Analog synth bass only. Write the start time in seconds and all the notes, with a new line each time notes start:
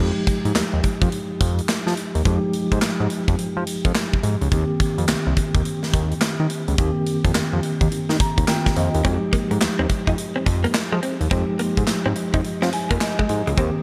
0.00 F2
0.45 G#2
0.55 D#2
0.73 D#2
1.02 F2
1.41 F2
1.87 F3
2.15 D#2
2.25 F2
2.72 G#2
2.82 G#2
3.00 G#2
3.28 F2
3.39 F3
3.57 F3
3.85 F2
4.23 G#2
4.41 C#2
4.52 D#2
4.98 F2
5.09 C2
5.27 C2
5.55 D#2
5.94 D#2
6.40 D#3
6.68 C#2
6.78 D#2
7.25 F2
7.35 F2
7.53 F2
7.81 D#2
7.91 D#3
8.09 D#3
8.38 D#2
8.76 F2
8.94 D#2
9.05 F2
9.51 G#2
9.61 D#2
9.79 D#2
10.07 F2
10.46 F2
10.92 F3
11.21 D#2
11.31 F2
11.77 G#2
11.88 G#2
12.06 G#2
12.34 F2
12.45 F3
12.63 F3
12.91 F2
13.29 G#2
13.47 C#2
13.57 D#2